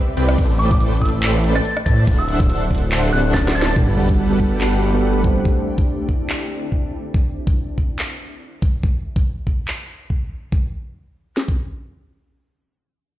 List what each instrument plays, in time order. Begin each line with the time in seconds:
0.17 detuned saw bass C2, supersaw synth C4 G4 B4 D5 G5, open hi-hat
0.29 cross-stick
0.38 detuned saw bass A1, supersaw synth A3 A4 B4 C5 D5 G5, kick, closed hi-hat, ride
0.59 synth bell D6, closed hi-hat
0.71 synth bell D6, kick
0.80 synth bell D6, closed hi-hat
1.02 synth bell E6, kick, closed hi-hat
1.05 closed hi-hat
1.09 closed hi-hat
1.23 clap, closed hi-hat
1.44 closed hi-hat
1.55 synth bell A6, cross-stick
1.65 closed hi-hat
1.77 cross-stick
1.86 detuned saw bass A2, supersaw synth A3 A4 B4 C5 D5 A5, synth bell A6, kick, open hi-hat
2.07 detuned saw bass D1, supersaw synth D4 A4 C5 E5 F#5, kick, closed hi-hat, ride
2.19 synth bell E6
2.29 closed hi-hat
2.40 kick
2.50 closed hi-hat
2.71 kick, closed hi-hat
2.75 closed hi-hat
2.78 closed hi-hat
2.92 clap, closed hi-hat
3.13 detuned saw bass D1, supersaw synth D4 A4 C5 E5 F#5, synth bell F#6, closed hi-hat
3.34 synth bell A6, kick, snare, closed hi-hat
3.48 snare
3.55 detuned saw bass D1, supersaw synth D4 A4 C5 E5 A5, synth bell A6, open hi-hat
3.62 snare
3.76 detuned saw bass G1, supersaw synth G3 G4 A4 B4 F#5, ambient pad A3 D4 G4, kick, sub drop
3.97 synth pluck G3 B3 D4 F#4 A4
4.09 kick
4.29 synth pluck G3 B3 D4 F#4 A4
4.40 kick
4.60 synth pluck G3 B3 D4 F#4 A4, clap
4.93 synth pluck G3 B3 D4 F#4 A4
5.23 synth pluck G3 C4 D4 E4 C5, kick
5.45 ambient pad D3 C4 E4, kick
5.78 kick
6.09 kick
6.30 clap
6.72 kick
7.14 kick
7.47 kick
7.78 kick
7.99 clap
8.62 kick
8.83 kick
9.16 kick
9.47 kick
9.68 clap
10.10 kick
10.52 kick
11.37 snare
11.48 kick